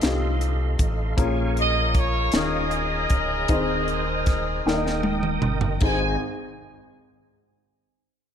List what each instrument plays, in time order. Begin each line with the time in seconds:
Already playing: upright piano A2 A3 C4 D#4 F4 A4, tonewheel organ A4 D#5 F5 C6
0.01 sub bass C2, upright piano A3 C4 D#4 F4 G4, snare, closed hi-hat
0.41 closed hi-hat
0.79 sub bass A1, kick, closed hi-hat
1.17 sub bass A#1, upright piano A#2 A#3 C#4 F4 G#4 A#4, tonewheel organ A#4 G#5 C#6, kick, closed hi-hat
1.57 horn section D#5, closed hi-hat
1.94 horn section C#5, kick, closed hi-hat
2.32 sub bass D#1, upright piano D#3 C#4 D#4 F4 G#4 A#4, tonewheel organ C#5 D#6, snare, closed hi-hat
2.36 horn section G#4 A#4 D#5
2.71 closed hi-hat
3.10 sub bass D1, kick, closed hi-hat
3.48 sub bass D#1, upright piano D#3 C4 D#4 G#4 C5 D#5, tonewheel organ C5 D#5, kick, closed hi-hat
3.88 closed hi-hat
4.26 kick, snare, closed hi-hat
4.66 sub bass D#1, upright piano D#3 A#3 D#4 A#4 D5 G5, tonewheel organ A#4 G5 D#6, snare
4.74 upright piano D#5
4.87 snare
5.03 high tom
5.23 mid tom
5.42 sub bass G1, mid tom
5.61 floor tom
5.80 sub bass G#1, upright piano G#1 C4 D#4 G#4 C5, tonewheel organ G#3 G#4 C5 D#5, horn section G#5, kick, crash